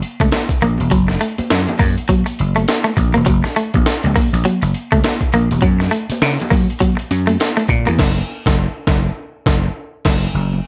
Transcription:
0.02 closed hi-hat
0.20 slap bass C#2, clean electric guitar A3, kick, closed hi-hat, high conga
0.32 snare, closed hi-hat, high conga
0.49 kick, closed hi-hat, muted conga
0.61 slap bass A#1, clean electric guitar A#3, closed hi-hat
0.78 slap bass E1, closed hi-hat, high conga
0.91 slap bass F#1, clean electric guitar F#3, kick, closed hi-hat
1.08 muted clean electric guitar stroke, snare, closed hi-hat, muted conga
1.21 clean electric guitar A3, closed hi-hat
1.38 muted slap bass stroke, closed hi-hat, high conga
1.50 slap bass F#2, snare, closed hi-hat, muted conga
1.68 closed hi-hat, muted conga, high conga, low conga
1.79 slap bass F#2, clean electric guitar A#3, kick, open hi-hat, low conga
1.98 closed hi-hat
2.09 clean electric guitar F#3, kick, closed hi-hat, muted conga, high conga
2.26 muted clean electric guitar stroke, closed hi-hat
2.39 slap bass F#1, closed hi-hat
2.56 clean electric guitar A3, closed hi-hat, high conga
2.68 snare, closed hi-hat, high conga
2.84 clean electric guitar A3, closed hi-hat
2.97 slap bass A#1, muted clean electric guitar stroke, kick, closed hi-hat
3.14 slap bass E1, clean electric guitar A#3, closed hi-hat, high conga
3.26 slap bass F#1, clean electric guitar F#3, kick, closed hi-hat
3.44 muted clean electric guitar stroke, snare, closed hi-hat, muted conga
3.56 clean electric guitar A3, closed hi-hat
3.74 slap bass A#1, kick, closed hi-hat, high conga
3.86 snare, closed hi-hat, muted conga
4.04 slap bass C#2, closed hi-hat, high conga, low conga
4.16 clean electric guitar A#3, kick, open hi-hat, low conga
4.33 slap bass A#1, closed hi-hat
4.45 clean electric guitar F#3, closed hi-hat, high conga
4.62 slap bass F#1, muted clean electric guitar stroke, closed hi-hat
4.74 closed hi-hat
4.92 slap bass C#2, clean electric guitar A3, kick, closed hi-hat, high conga
5.04 snare, closed hi-hat, muted conga, high conga
5.21 kick, closed hi-hat, muted conga
5.33 slap bass A#1, clean electric guitar A#3, closed hi-hat
5.51 slap bass E1, closed hi-hat, high conga
5.62 slap bass F#2, clean electric guitar F#3, kick, closed hi-hat
5.80 muted clean electric guitar stroke, snare, closed hi-hat, muted conga
5.91 clean electric guitar A3, closed hi-hat
6.10 muted slap bass stroke, closed hi-hat, high conga
6.22 slap bass C#3, snare, closed hi-hat
6.40 closed hi-hat, high conga, low conga
6.50 slap bass F#3, clean electric guitar A#3, kick, open hi-hat, low conga
6.70 closed hi-hat
6.80 clean electric guitar F#3, kick, closed hi-hat, muted conga, high conga
6.97 muted clean electric guitar stroke, closed hi-hat, muted conga
7.11 slap bass F#2, closed hi-hat
7.27 clean electric guitar A3, closed hi-hat, high conga
7.40 snare, closed hi-hat, high conga
7.57 clean electric guitar A3, closed hi-hat, muted conga
7.69 slap bass A#2, muted clean electric guitar stroke, kick, closed hi-hat
7.86 slap bass E2, clean electric guitar A#3, closed hi-hat, high conga
7.99 slap bass F#1, kick, snare, crash
8.46 slap bass F#1, kick, snare
8.87 slap bass F#1, kick, snare
9.46 slap bass F#1, kick, snare
10.05 slap bass F#1, kick, snare, crash
10.34 slap bass F#1
10.53 muted conga

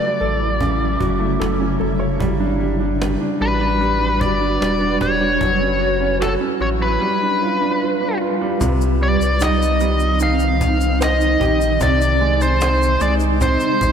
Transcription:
Already playing: grand piano C#3 F#3 A3 F#4 A4, ambient pad C#3 F#3 E4, lead electric guitar D5
0.20 sub bass A1, grand piano A4, cajon slap
0.60 grand piano C#3, cajon bass
1.00 sub bass F#1, grand piano F#4, cajon bass
1.20 grand piano A3
1.40 sub bass F#1, grand piano A4, cajon slap
1.60 grand piano C#4
1.80 sub bass F#1, grand piano A4, cajon slap
1.99 grand piano C#5
2.19 sub bass G1, grand piano G3, ambient pad G3 F#4 B4, cajon bass
2.40 grand piano D4
2.60 grand piano G3, cajon slap
2.80 grand piano D4
3.01 grand piano G3, cajon slap
3.21 grand piano D4
3.41 sub bass A1, grand piano G3, lead electric guitar B4, cajon slap
3.60 grand piano D4
3.81 grand piano G3, cajon slap
4.01 grand piano D4
4.21 sub bass G1, grand piano G3, lead electric guitar D5, cajon bass
4.41 grand piano D4
4.61 sub bass E1, grand piano G3, cajon slap
4.81 grand piano D4
5.01 sub bass E1, grand piano G3, lead electric guitar C#5, cajon bass
5.21 grand piano D4
5.41 sub bass F#1, grand piano F#3, cajon bass
5.60 grand piano C#4
5.81 grand piano F#4, cajon slap
6.00 grand piano C#4
6.20 grand piano F#4, lead electric guitar A4, cajon slap
6.40 grand piano C#4
6.60 sub bass A1, grand piano F#4, lead electric guitar C#5, cajon slap
6.80 grand piano F#3, lead electric guitar B4
7.01 grand piano G3
7.22 grand piano D4
7.42 grand piano F4
7.61 grand piano D4
7.82 grand piano F4
8.01 grand piano D4
8.21 grand piano F4
8.41 grand piano G3
8.61 sub bass C2, grand piano C3, ambient pad D#3 C4 D#4, cajon bass, shaker
8.81 shaker
9.01 grand piano G3, lead electric guitar D5, cajon slap
9.21 sub bass C2, shaker
9.40 sub bass C2, grand piano D#4, lead electric guitar D#5, cajon slap, shaker
9.61 cajon slap, shaker
9.80 grand piano G3, cajon slap, shaker
9.99 shaker
10.20 grand piano D#4, lead electric guitar F5, cajon slap, shaker
10.39 shaker
10.61 cajon bass, shaker
10.81 shaker
11.01 grand piano C5, lead electric guitar D#5, cajon slap, shaker
11.21 shaker
11.40 sub bass A#1, grand piano G4, cajon bass
11.61 shaker
11.80 sub bass C2, grand piano C3, ambient pad C3 G#3 D#4, lead electric guitar D5, cajon bass, shaker
12.01 shaker
12.21 grand piano G#3, cajon slap
12.41 lead electric guitar C5, shaker
12.61 grand piano C4, cajon slap, shaker
12.81 cajon slap, shaker
13.01 sub bass C2, grand piano G#3, lead electric guitar D5, cajon slap, shaker
13.20 shaker
13.41 grand piano C4, lead electric guitar C5, cajon bass, shaker
13.60 shaker
13.81 sub bass A#1, cajon bass, shaker

